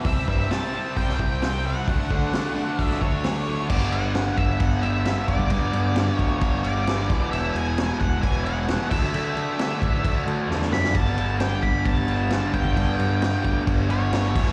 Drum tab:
CC |----------------|----------------|x-x-x-x-x-x-x-x-|x-x-x-x-x-x-x-x-|
HH |o---o---o---o---|o---o---o---o---|----------------|----------------|
SD |----o----o--o---|----o----o--o---|----o-------o---|----o-------o-o-|
BD |o-o-----o-o-----|o-o-----o-o-----|o-----o-o-----oo|o-----o-o-----o-|

CC |x-x-x-x-x-x-x-x-|x-x-x-x-x-x-----|x-x-x-x-x-x-x-x-|x-x-x-x-x-x-x-x-|
HH |----------------|----------------|----------------|----------------|
SD |----o-------o-o-|----o-------oooo|----o-------o---|----o-------o-o-|
BD |------o-o-----o-|------o-o-------|o-----o-o-----oo|o-----o-o-----o-|